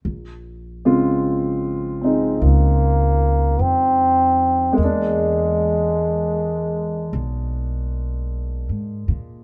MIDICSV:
0, 0, Header, 1, 4, 480
1, 0, Start_track
1, 0, Key_signature, -5, "minor"
1, 0, Tempo, 1178782
1, 24, Time_signature, 4, 2, 24, 8
1, 3843, End_track
2, 0, Start_track
2, 0, Title_t, "Upright piano"
2, 0, Program_c, 0, 0
2, 94, Control_c, 0, 64, 127
2, 347, Note_on_c, 0, 56, 43
2, 348, Note_on_c, 0, 60, 37
2, 348, Note_on_c, 0, 65, 46
2, 350, Note_on_c, 0, 49, 38
2, 814, Note_off_c, 0, 60, 0
2, 820, Note_on_c, 0, 60, 32
2, 832, Note_on_c, 0, 63, 38
2, 1919, Note_off_c, 0, 56, 0
2, 1925, Note_on_c, 0, 56, 45
2, 1940, Note_on_c, 0, 58, 42
2, 1944, Note_off_c, 0, 49, 0
2, 1944, Note_off_c, 0, 60, 0
2, 1944, Note_off_c, 0, 65, 0
2, 1950, Note_off_c, 0, 63, 0
2, 1951, Control_c, 0, 64, 0
2, 1971, Note_on_c, 0, 62, 47
2, 2034, Control_c, 0, 64, 127
2, 3843, Note_off_c, 0, 56, 0
2, 3843, Note_off_c, 0, 58, 0
2, 3843, Note_off_c, 0, 62, 0
2, 3843, End_track
3, 0, Start_track
3, 0, Title_t, "Trombone"
3, 0, Program_c, 1, 57
3, 835, Note_on_c, 1, 56, 62
3, 990, Note_on_c, 1, 58, 75
3, 996, Note_off_c, 1, 56, 0
3, 1471, Note_on_c, 1, 60, 81
3, 1477, Note_off_c, 1, 58, 0
3, 1939, Note_on_c, 1, 56, 64
3, 1945, Note_off_c, 1, 60, 0
3, 2902, Note_off_c, 1, 56, 0
3, 3843, End_track
4, 0, Start_track
4, 0, Title_t, "Upright bass"
4, 0, Program_c, 2, 32
4, 20, Note_on_c, 2, 34, 59
4, 967, Note_off_c, 2, 34, 0
4, 984, Note_on_c, 2, 37, 62
4, 1449, Note_off_c, 2, 37, 0
4, 1462, Note_on_c, 2, 41, 56
4, 1928, Note_off_c, 2, 41, 0
4, 1945, Note_on_c, 2, 40, 61
4, 2889, Note_off_c, 2, 40, 0
4, 2903, Note_on_c, 2, 35, 64
4, 3528, Note_off_c, 2, 35, 0
4, 3540, Note_on_c, 2, 44, 44
4, 3691, Note_off_c, 2, 44, 0
4, 3698, Note_on_c, 2, 46, 52
4, 3843, Note_off_c, 2, 46, 0
4, 3843, End_track
0, 0, End_of_file